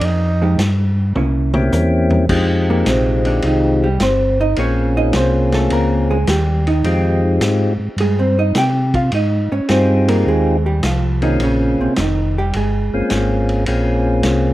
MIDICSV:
0, 0, Header, 1, 6, 480
1, 0, Start_track
1, 0, Key_signature, -4, "minor"
1, 0, Tempo, 569260
1, 16, Time_signature, 4, 2, 24, 8
1, 12256, End_track
2, 0, Start_track
2, 0, Title_t, "Hollow-body jazz guitar"
2, 0, Program_c, 0, 26
2, 351, Note_on_c, 0, 53, 63
2, 354, Note_on_c, 0, 56, 68
2, 360, Note_on_c, 0, 63, 67
2, 364, Note_on_c, 0, 67, 65
2, 483, Note_off_c, 0, 53, 0
2, 485, Note_off_c, 0, 56, 0
2, 487, Note_off_c, 0, 63, 0
2, 489, Note_off_c, 0, 67, 0
2, 976, Note_on_c, 0, 58, 55
2, 984, Note_on_c, 0, 61, 63
2, 990, Note_on_c, 0, 64, 62
2, 1272, Note_off_c, 0, 58, 0
2, 1276, Note_off_c, 0, 61, 0
2, 1279, Note_off_c, 0, 64, 0
2, 2277, Note_on_c, 0, 58, 73
2, 2282, Note_on_c, 0, 46, 57
2, 2416, Note_off_c, 0, 58, 0
2, 2418, Note_off_c, 0, 46, 0
2, 2436, Note_on_c, 0, 60, 69
2, 2440, Note_on_c, 0, 48, 53
2, 2745, Note_off_c, 0, 60, 0
2, 2747, Note_off_c, 0, 48, 0
2, 2752, Note_on_c, 0, 62, 82
2, 2756, Note_on_c, 0, 50, 63
2, 2893, Note_off_c, 0, 62, 0
2, 2895, Note_off_c, 0, 50, 0
2, 2919, Note_on_c, 0, 51, 51
2, 2921, Note_on_c, 0, 63, 57
2, 3226, Note_off_c, 0, 63, 0
2, 3228, Note_off_c, 0, 51, 0
2, 3234, Note_on_c, 0, 55, 71
2, 3236, Note_on_c, 0, 67, 72
2, 3374, Note_off_c, 0, 67, 0
2, 3375, Note_off_c, 0, 55, 0
2, 3390, Note_on_c, 0, 60, 70
2, 3394, Note_on_c, 0, 72, 82
2, 3702, Note_off_c, 0, 72, 0
2, 3703, Note_off_c, 0, 60, 0
2, 3715, Note_on_c, 0, 63, 92
2, 3716, Note_on_c, 0, 75, 85
2, 3854, Note_off_c, 0, 75, 0
2, 3856, Note_off_c, 0, 63, 0
2, 3874, Note_on_c, 0, 73, 81
2, 3877, Note_on_c, 0, 61, 65
2, 4184, Note_off_c, 0, 73, 0
2, 4186, Note_off_c, 0, 61, 0
2, 4190, Note_on_c, 0, 63, 76
2, 4191, Note_on_c, 0, 75, 97
2, 4333, Note_off_c, 0, 75, 0
2, 4334, Note_off_c, 0, 63, 0
2, 4352, Note_on_c, 0, 72, 80
2, 4356, Note_on_c, 0, 60, 64
2, 4664, Note_off_c, 0, 72, 0
2, 4666, Note_off_c, 0, 60, 0
2, 4674, Note_on_c, 0, 69, 88
2, 4679, Note_on_c, 0, 57, 71
2, 4815, Note_off_c, 0, 69, 0
2, 4817, Note_off_c, 0, 57, 0
2, 4829, Note_on_c, 0, 70, 87
2, 4833, Note_on_c, 0, 58, 71
2, 5142, Note_off_c, 0, 70, 0
2, 5144, Note_off_c, 0, 58, 0
2, 5149, Note_on_c, 0, 68, 84
2, 5152, Note_on_c, 0, 56, 71
2, 5292, Note_off_c, 0, 68, 0
2, 5294, Note_off_c, 0, 56, 0
2, 5310, Note_on_c, 0, 67, 93
2, 5316, Note_on_c, 0, 55, 72
2, 5623, Note_off_c, 0, 67, 0
2, 5625, Note_off_c, 0, 55, 0
2, 5628, Note_on_c, 0, 63, 84
2, 5634, Note_on_c, 0, 51, 64
2, 6073, Note_off_c, 0, 63, 0
2, 6076, Note_off_c, 0, 51, 0
2, 6749, Note_on_c, 0, 68, 74
2, 6753, Note_on_c, 0, 56, 61
2, 6898, Note_off_c, 0, 68, 0
2, 6900, Note_off_c, 0, 56, 0
2, 6906, Note_on_c, 0, 72, 81
2, 6910, Note_on_c, 0, 60, 62
2, 7056, Note_off_c, 0, 72, 0
2, 7058, Note_off_c, 0, 60, 0
2, 7071, Note_on_c, 0, 63, 64
2, 7074, Note_on_c, 0, 75, 82
2, 7218, Note_off_c, 0, 75, 0
2, 7220, Note_off_c, 0, 63, 0
2, 7232, Note_on_c, 0, 67, 86
2, 7233, Note_on_c, 0, 79, 103
2, 7544, Note_off_c, 0, 79, 0
2, 7545, Note_off_c, 0, 67, 0
2, 7548, Note_on_c, 0, 65, 81
2, 7549, Note_on_c, 0, 77, 83
2, 7692, Note_off_c, 0, 77, 0
2, 7693, Note_off_c, 0, 65, 0
2, 7710, Note_on_c, 0, 63, 72
2, 7711, Note_on_c, 0, 75, 71
2, 8023, Note_off_c, 0, 63, 0
2, 8023, Note_off_c, 0, 75, 0
2, 8026, Note_on_c, 0, 61, 74
2, 8030, Note_on_c, 0, 73, 80
2, 8172, Note_off_c, 0, 61, 0
2, 8172, Note_off_c, 0, 73, 0
2, 8183, Note_on_c, 0, 72, 75
2, 8188, Note_on_c, 0, 60, 65
2, 8500, Note_off_c, 0, 72, 0
2, 8502, Note_off_c, 0, 60, 0
2, 8502, Note_on_c, 0, 58, 76
2, 8508, Note_on_c, 0, 70, 82
2, 8650, Note_off_c, 0, 58, 0
2, 8651, Note_off_c, 0, 70, 0
2, 8669, Note_on_c, 0, 56, 61
2, 8671, Note_on_c, 0, 68, 76
2, 8982, Note_off_c, 0, 68, 0
2, 8983, Note_off_c, 0, 56, 0
2, 8989, Note_on_c, 0, 55, 73
2, 8991, Note_on_c, 0, 67, 69
2, 9132, Note_off_c, 0, 67, 0
2, 9133, Note_off_c, 0, 55, 0
2, 9152, Note_on_c, 0, 65, 76
2, 9156, Note_on_c, 0, 53, 63
2, 9464, Note_off_c, 0, 65, 0
2, 9466, Note_off_c, 0, 53, 0
2, 9467, Note_on_c, 0, 51, 67
2, 9470, Note_on_c, 0, 63, 69
2, 9612, Note_off_c, 0, 51, 0
2, 9612, Note_off_c, 0, 63, 0
2, 9639, Note_on_c, 0, 61, 79
2, 9643, Note_on_c, 0, 49, 58
2, 9947, Note_off_c, 0, 61, 0
2, 9950, Note_off_c, 0, 49, 0
2, 9956, Note_on_c, 0, 60, 71
2, 9962, Note_on_c, 0, 48, 55
2, 10096, Note_off_c, 0, 60, 0
2, 10099, Note_off_c, 0, 48, 0
2, 10118, Note_on_c, 0, 63, 68
2, 10121, Note_on_c, 0, 51, 57
2, 10427, Note_off_c, 0, 63, 0
2, 10428, Note_off_c, 0, 51, 0
2, 10442, Note_on_c, 0, 67, 92
2, 10447, Note_on_c, 0, 55, 66
2, 10579, Note_off_c, 0, 67, 0
2, 10582, Note_off_c, 0, 55, 0
2, 10594, Note_on_c, 0, 68, 72
2, 10599, Note_on_c, 0, 56, 56
2, 11989, Note_off_c, 0, 68, 0
2, 11991, Note_off_c, 0, 56, 0
2, 12256, End_track
3, 0, Start_track
3, 0, Title_t, "Tenor saxophone"
3, 0, Program_c, 1, 66
3, 41, Note_on_c, 1, 63, 90
3, 508, Note_off_c, 1, 63, 0
3, 12256, End_track
4, 0, Start_track
4, 0, Title_t, "Tonewheel organ"
4, 0, Program_c, 2, 16
4, 1297, Note_on_c, 2, 58, 69
4, 1298, Note_on_c, 2, 60, 67
4, 1301, Note_on_c, 2, 61, 65
4, 1305, Note_on_c, 2, 64, 64
4, 1309, Note_on_c, 2, 67, 79
4, 1900, Note_off_c, 2, 58, 0
4, 1901, Note_off_c, 2, 60, 0
4, 1902, Note_off_c, 2, 61, 0
4, 1904, Note_off_c, 2, 64, 0
4, 1906, Note_off_c, 2, 67, 0
4, 1935, Note_on_c, 2, 56, 68
4, 1936, Note_on_c, 2, 60, 58
4, 1938, Note_on_c, 2, 63, 64
4, 1940, Note_on_c, 2, 65, 61
4, 1945, Note_on_c, 2, 67, 70
4, 3284, Note_off_c, 2, 56, 0
4, 3285, Note_off_c, 2, 60, 0
4, 3286, Note_off_c, 2, 63, 0
4, 3287, Note_off_c, 2, 65, 0
4, 3289, Note_off_c, 2, 67, 0
4, 3854, Note_on_c, 2, 58, 60
4, 3854, Note_on_c, 2, 60, 52
4, 3861, Note_on_c, 2, 61, 51
4, 3861, Note_on_c, 2, 65, 53
4, 3867, Note_on_c, 2, 68, 61
4, 5205, Note_off_c, 2, 58, 0
4, 5205, Note_off_c, 2, 60, 0
4, 5208, Note_off_c, 2, 61, 0
4, 5208, Note_off_c, 2, 65, 0
4, 5211, Note_off_c, 2, 68, 0
4, 5771, Note_on_c, 2, 56, 61
4, 5775, Note_on_c, 2, 60, 55
4, 5777, Note_on_c, 2, 63, 59
4, 5779, Note_on_c, 2, 65, 57
4, 5783, Note_on_c, 2, 67, 71
4, 6518, Note_off_c, 2, 56, 0
4, 6519, Note_off_c, 2, 60, 0
4, 6520, Note_off_c, 2, 63, 0
4, 6522, Note_off_c, 2, 65, 0
4, 6523, Note_off_c, 2, 67, 0
4, 8165, Note_on_c, 2, 68, 72
4, 8168, Note_on_c, 2, 60, 60
4, 8169, Note_on_c, 2, 65, 62
4, 8170, Note_on_c, 2, 63, 64
4, 8173, Note_on_c, 2, 67, 74
4, 8914, Note_off_c, 2, 68, 0
4, 8916, Note_off_c, 2, 60, 0
4, 8917, Note_off_c, 2, 63, 0
4, 8917, Note_off_c, 2, 65, 0
4, 8918, Note_off_c, 2, 67, 0
4, 9459, Note_on_c, 2, 58, 57
4, 9461, Note_on_c, 2, 60, 55
4, 9466, Note_on_c, 2, 61, 55
4, 9466, Note_on_c, 2, 65, 56
4, 9472, Note_on_c, 2, 68, 69
4, 10062, Note_off_c, 2, 58, 0
4, 10063, Note_off_c, 2, 60, 0
4, 10065, Note_off_c, 2, 61, 0
4, 10065, Note_off_c, 2, 65, 0
4, 10068, Note_off_c, 2, 68, 0
4, 10908, Note_on_c, 2, 58, 63
4, 10910, Note_on_c, 2, 61, 58
4, 10912, Note_on_c, 2, 60, 59
4, 10914, Note_on_c, 2, 65, 57
4, 10916, Note_on_c, 2, 68, 70
4, 11506, Note_off_c, 2, 58, 0
4, 11507, Note_off_c, 2, 61, 0
4, 11508, Note_off_c, 2, 60, 0
4, 11509, Note_off_c, 2, 65, 0
4, 11509, Note_off_c, 2, 68, 0
4, 11532, Note_on_c, 2, 58, 64
4, 11532, Note_on_c, 2, 60, 62
4, 11535, Note_on_c, 2, 65, 60
4, 11536, Note_on_c, 2, 68, 67
4, 11537, Note_on_c, 2, 61, 54
4, 12256, Note_off_c, 2, 58, 0
4, 12256, Note_off_c, 2, 60, 0
4, 12256, Note_off_c, 2, 61, 0
4, 12256, Note_off_c, 2, 65, 0
4, 12256, Note_off_c, 2, 68, 0
4, 12256, End_track
5, 0, Start_track
5, 0, Title_t, "Tonewheel organ"
5, 0, Program_c, 3, 16
5, 7, Note_on_c, 3, 41, 89
5, 476, Note_off_c, 3, 41, 0
5, 488, Note_on_c, 3, 43, 103
5, 956, Note_off_c, 3, 43, 0
5, 976, Note_on_c, 3, 36, 84
5, 1440, Note_off_c, 3, 36, 0
5, 1454, Note_on_c, 3, 40, 88
5, 1919, Note_off_c, 3, 40, 0
5, 1935, Note_on_c, 3, 41, 80
5, 2400, Note_off_c, 3, 41, 0
5, 2413, Note_on_c, 3, 34, 86
5, 2879, Note_off_c, 3, 34, 0
5, 2893, Note_on_c, 3, 36, 78
5, 3359, Note_off_c, 3, 36, 0
5, 3372, Note_on_c, 3, 31, 85
5, 3839, Note_off_c, 3, 31, 0
5, 3855, Note_on_c, 3, 34, 84
5, 4320, Note_off_c, 3, 34, 0
5, 4337, Note_on_c, 3, 36, 91
5, 4801, Note_off_c, 3, 36, 0
5, 4812, Note_on_c, 3, 37, 81
5, 5279, Note_off_c, 3, 37, 0
5, 5290, Note_on_c, 3, 39, 90
5, 5758, Note_off_c, 3, 39, 0
5, 5767, Note_on_c, 3, 41, 83
5, 6237, Note_off_c, 3, 41, 0
5, 6245, Note_on_c, 3, 44, 97
5, 6557, Note_off_c, 3, 44, 0
5, 6574, Note_on_c, 3, 44, 39
5, 6652, Note_off_c, 3, 44, 0
5, 6716, Note_on_c, 3, 43, 87
5, 7191, Note_off_c, 3, 43, 0
5, 7210, Note_on_c, 3, 48, 82
5, 7679, Note_off_c, 3, 48, 0
5, 7693, Note_on_c, 3, 44, 87
5, 8001, Note_off_c, 3, 44, 0
5, 8026, Note_on_c, 3, 44, 41
5, 8101, Note_off_c, 3, 44, 0
5, 8174, Note_on_c, 3, 43, 94
5, 8641, Note_off_c, 3, 43, 0
5, 8655, Note_on_c, 3, 39, 81
5, 9121, Note_off_c, 3, 39, 0
5, 9135, Note_on_c, 3, 36, 87
5, 9601, Note_off_c, 3, 36, 0
5, 9611, Note_on_c, 3, 34, 86
5, 9920, Note_off_c, 3, 34, 0
5, 9947, Note_on_c, 3, 34, 40
5, 10022, Note_off_c, 3, 34, 0
5, 10098, Note_on_c, 3, 29, 90
5, 10562, Note_off_c, 3, 29, 0
5, 10579, Note_on_c, 3, 31, 82
5, 10884, Note_off_c, 3, 31, 0
5, 10907, Note_on_c, 3, 31, 39
5, 10982, Note_off_c, 3, 31, 0
5, 11050, Note_on_c, 3, 32, 88
5, 11517, Note_off_c, 3, 32, 0
5, 11533, Note_on_c, 3, 34, 87
5, 11998, Note_off_c, 3, 34, 0
5, 12004, Note_on_c, 3, 36, 95
5, 12256, Note_off_c, 3, 36, 0
5, 12256, End_track
6, 0, Start_track
6, 0, Title_t, "Drums"
6, 10, Note_on_c, 9, 51, 69
6, 95, Note_off_c, 9, 51, 0
6, 495, Note_on_c, 9, 44, 55
6, 495, Note_on_c, 9, 51, 75
6, 498, Note_on_c, 9, 38, 70
6, 580, Note_off_c, 9, 44, 0
6, 580, Note_off_c, 9, 51, 0
6, 582, Note_off_c, 9, 38, 0
6, 973, Note_on_c, 9, 47, 51
6, 1057, Note_off_c, 9, 47, 0
6, 1295, Note_on_c, 9, 47, 72
6, 1380, Note_off_c, 9, 47, 0
6, 1453, Note_on_c, 9, 44, 64
6, 1455, Note_on_c, 9, 43, 68
6, 1537, Note_off_c, 9, 44, 0
6, 1539, Note_off_c, 9, 43, 0
6, 1773, Note_on_c, 9, 43, 85
6, 1858, Note_off_c, 9, 43, 0
6, 1932, Note_on_c, 9, 49, 75
6, 1933, Note_on_c, 9, 36, 72
6, 2017, Note_off_c, 9, 49, 0
6, 2018, Note_off_c, 9, 36, 0
6, 2411, Note_on_c, 9, 44, 59
6, 2411, Note_on_c, 9, 51, 71
6, 2414, Note_on_c, 9, 38, 62
6, 2496, Note_off_c, 9, 44, 0
6, 2496, Note_off_c, 9, 51, 0
6, 2498, Note_off_c, 9, 38, 0
6, 2740, Note_on_c, 9, 51, 44
6, 2824, Note_off_c, 9, 51, 0
6, 2887, Note_on_c, 9, 51, 64
6, 2971, Note_off_c, 9, 51, 0
6, 3370, Note_on_c, 9, 44, 62
6, 3370, Note_on_c, 9, 51, 73
6, 3373, Note_on_c, 9, 38, 68
6, 3455, Note_off_c, 9, 44, 0
6, 3455, Note_off_c, 9, 51, 0
6, 3457, Note_off_c, 9, 38, 0
6, 3848, Note_on_c, 9, 51, 62
6, 3932, Note_off_c, 9, 51, 0
6, 4325, Note_on_c, 9, 44, 51
6, 4325, Note_on_c, 9, 51, 70
6, 4327, Note_on_c, 9, 38, 69
6, 4409, Note_off_c, 9, 44, 0
6, 4409, Note_off_c, 9, 51, 0
6, 4412, Note_off_c, 9, 38, 0
6, 4656, Note_on_c, 9, 51, 48
6, 4659, Note_on_c, 9, 38, 51
6, 4741, Note_off_c, 9, 51, 0
6, 4743, Note_off_c, 9, 38, 0
6, 4808, Note_on_c, 9, 51, 65
6, 4892, Note_off_c, 9, 51, 0
6, 5289, Note_on_c, 9, 44, 56
6, 5289, Note_on_c, 9, 51, 77
6, 5292, Note_on_c, 9, 38, 72
6, 5373, Note_off_c, 9, 44, 0
6, 5373, Note_off_c, 9, 51, 0
6, 5376, Note_off_c, 9, 38, 0
6, 5622, Note_on_c, 9, 51, 45
6, 5707, Note_off_c, 9, 51, 0
6, 5770, Note_on_c, 9, 51, 63
6, 5854, Note_off_c, 9, 51, 0
6, 6248, Note_on_c, 9, 44, 53
6, 6248, Note_on_c, 9, 51, 74
6, 6250, Note_on_c, 9, 38, 73
6, 6332, Note_off_c, 9, 44, 0
6, 6332, Note_off_c, 9, 51, 0
6, 6334, Note_off_c, 9, 38, 0
6, 6728, Note_on_c, 9, 51, 65
6, 6812, Note_off_c, 9, 51, 0
6, 7207, Note_on_c, 9, 44, 62
6, 7207, Note_on_c, 9, 51, 73
6, 7209, Note_on_c, 9, 38, 72
6, 7291, Note_off_c, 9, 44, 0
6, 7291, Note_off_c, 9, 51, 0
6, 7293, Note_off_c, 9, 38, 0
6, 7538, Note_on_c, 9, 36, 51
6, 7539, Note_on_c, 9, 51, 43
6, 7622, Note_off_c, 9, 36, 0
6, 7623, Note_off_c, 9, 51, 0
6, 7687, Note_on_c, 9, 51, 66
6, 7771, Note_off_c, 9, 51, 0
6, 8167, Note_on_c, 9, 44, 51
6, 8167, Note_on_c, 9, 51, 70
6, 8170, Note_on_c, 9, 38, 71
6, 8251, Note_off_c, 9, 44, 0
6, 8251, Note_off_c, 9, 51, 0
6, 8254, Note_off_c, 9, 38, 0
6, 8502, Note_on_c, 9, 51, 70
6, 8587, Note_off_c, 9, 51, 0
6, 9130, Note_on_c, 9, 44, 52
6, 9130, Note_on_c, 9, 51, 76
6, 9132, Note_on_c, 9, 38, 67
6, 9214, Note_off_c, 9, 44, 0
6, 9214, Note_off_c, 9, 51, 0
6, 9217, Note_off_c, 9, 38, 0
6, 9459, Note_on_c, 9, 51, 44
6, 9543, Note_off_c, 9, 51, 0
6, 9610, Note_on_c, 9, 51, 62
6, 9695, Note_off_c, 9, 51, 0
6, 10087, Note_on_c, 9, 44, 53
6, 10087, Note_on_c, 9, 51, 66
6, 10089, Note_on_c, 9, 38, 70
6, 10171, Note_off_c, 9, 44, 0
6, 10171, Note_off_c, 9, 51, 0
6, 10174, Note_off_c, 9, 38, 0
6, 10569, Note_on_c, 9, 51, 61
6, 10653, Note_off_c, 9, 51, 0
6, 11044, Note_on_c, 9, 44, 59
6, 11044, Note_on_c, 9, 51, 72
6, 11047, Note_on_c, 9, 38, 72
6, 11129, Note_off_c, 9, 44, 0
6, 11129, Note_off_c, 9, 51, 0
6, 11131, Note_off_c, 9, 38, 0
6, 11373, Note_on_c, 9, 51, 44
6, 11458, Note_off_c, 9, 51, 0
6, 11520, Note_on_c, 9, 51, 74
6, 11604, Note_off_c, 9, 51, 0
6, 11999, Note_on_c, 9, 44, 55
6, 11999, Note_on_c, 9, 51, 70
6, 12002, Note_on_c, 9, 38, 71
6, 12084, Note_off_c, 9, 44, 0
6, 12084, Note_off_c, 9, 51, 0
6, 12086, Note_off_c, 9, 38, 0
6, 12256, End_track
0, 0, End_of_file